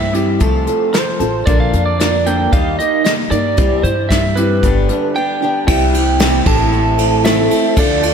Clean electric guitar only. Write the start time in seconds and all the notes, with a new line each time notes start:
Already playing: C3 E3
0.13 C3 E3 G3
0.41 C3 F3 A3
0.66 C3 F3 A3
0.94 C3 F3
1.20 C3 F3
1.47 A#2 D3 A#3
1.74 A#2 D3
2.01 A#2 D3
2.27 A#2 D3 A#3
2.53 D#3 A#3 D#4
2.80 D#3 A#3 D#4
3.06 D#3 A#3
3.32 D#3 A#3
3.57 C3 E3 G3
3.85 C3 E3
4.11 C3 E3
4.37 C3 E3 G3
4.62 G2 D3 G3
4.87 G2 D3 G3
5.15 G2 D3
5.41 G2 D3
5.67 C3 E3 G3 C4 E4
6.45 A2 E3 A3 C4 E4
7.24 A2 E3 A3 C4 E4
7.75 D3 A3 D4 F4